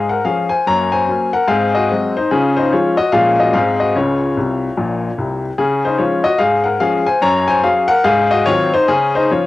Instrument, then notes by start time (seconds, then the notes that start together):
grand piano
Already playing: G#2
0.09 A#4 F#5
0.25 F3 C#4 G#4 F5
0.49 C5 G#5
0.67 F#2 A#3 C#5 A#5
0.92 C5 G#5
1.08 F#3 A#3 C#4
1.33 A#4 F#5
1.47 G#2 C4 G#4 F5
1.75 F#4 D#5
1.91 F#3 G#3 C4
2.17 D#4 C5
2.31 C#3 C#4 F4 G#4
2.57 D#4 C5
2.73 F3 G#3 C#4 F4 C#5
2.97 F#4 D#5
3.12 A#2 F3 G#3 C#4 G#4 F5
3.40 F#4 D#5
3.53 G#2 G#3 C4 G#4 F5
3.80 F#4 D#5
3.96 C#2 C#3 F4 C#5
4.37 C2 C3
4.77 A#1 A#2
5.18 C2 C3
5.58 C#3 C#4 G#4
5.85 D#4 C5
5.98 F3 G#3 C#4 F4 C#5
6.24 F#4 D#5
6.38 G#2 G#4 F5
6.64 A#4 F#5
6.80 F3 G#3 C#4 G#4 F5
7.07 C5 G#5
7.21 F#2 C#5 A#5
7.48 C5 G#5
7.63 F#3 C#4 G#4 F5
7.88 A#4 F#5
8.04 G#2 G#4 F5
8.31 F#4 D#5
8.46 D#3 F#3 C4 F4 C#5
8.74 D#4 C5
8.88 C#3 C#4 G#4
9.15 D#4 C5
9.31 F3 C#4 F4 C#5